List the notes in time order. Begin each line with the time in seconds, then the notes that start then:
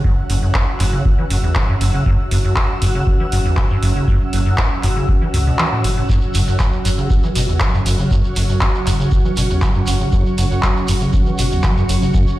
Already playing: C#4 F#4 F#5 E6
0.04 F#2, kick
0.29 F#1 F#2, open hi-hat
0.42 F#2
0.54 kick, clap
0.80 F#1 F#2, clap, open hi-hat
0.93 C#3
1.05 kick
1.18 E3
1.30 F#1 F#2, open hi-hat
1.43 E2
1.55 F#3, kick, clap
1.69 F#2
1.81 F#1 F#2, open hi-hat
1.94 C#3
2.06 F#2, kick
2.31 F#1 F#2, open hi-hat
2.44 F#2
2.56 kick, clap
2.82 F#1 F#2, open hi-hat
2.95 C#3
3.07 kick
3.20 E3
3.32 F#1 F#2, open hi-hat
3.45 E2
3.57 F#3, kick, clap
3.70 F#2
3.83 F#1 F#2, open hi-hat
3.96 C#3
4.08 F#2, kick
4.33 F#1 F#2, open hi-hat
4.46 F#2
4.58 kick, clap
4.83 F#1 F#2, clap, open hi-hat
4.96 C#3
5.09 kick
5.22 E3
5.34 C#2 F#2, open hi-hat
5.47 B2
5.59 E3, clap
5.72 A2
5.84 F#1 F#2, open hi-hat
5.97 A2
6.09 F#2 C#3 F#3 F#4, kick, shekere
6.21 shekere
6.34 F#1 F#2, open hi-hat, shekere
6.47 F#2, shekere
6.59 kick, clap, shekere
6.73 shekere
6.85 F#1 F#2, open hi-hat, shekere
6.98 C#3, shekere
7.06 C#6, shekere
7.10 kick
7.23 E3, shekere
7.35 F#1 B2, open hi-hat, shekere
7.48 E2, shekere
7.60 F#3, kick, clap, shekere
7.74 F#2, shekere
7.86 F#1 F#2, open hi-hat, shekere
7.99 C#3, shekere
8.11 F#2, kick, shekere
8.24 shekere
8.36 F#1 F#2, open hi-hat, shekere
8.49 F#2, shekere
8.61 kick, clap, shekere
8.75 shekere
8.86 F#1 F#2, clap, open hi-hat, shekere
9.00 C#3, shekere
9.12 kick, shekere
9.25 E3, shekere
9.37 F#1 B2, open hi-hat, shekere
9.50 E2, shekere
9.62 F#3, kick, clap, shekere
9.75 F#2, shekere
9.87 F#1 F#2, open hi-hat, shekere
10.01 C#3, shekere
10.12 F#2, kick, shekere
10.26 shekere
10.38 F#1 F#2, open hi-hat, shekere
10.51 F#2, shekere
10.63 kick, clap, shekere
10.77 shekere
10.88 F#1 F#2, open hi-hat, shekere
11.01 C#3, shekere
11.13 kick, shekere
11.26 E3, shekere
11.38 F#1 B2, open hi-hat, shekere
11.51 E2, shekere
11.63 F#3, kick, clap, shekere
11.77 F#2, shekere
11.89 F#1 F#2, open hi-hat, shekere
12.02 C#3, shekere
12.14 F#2, kick, shekere
12.27 shekere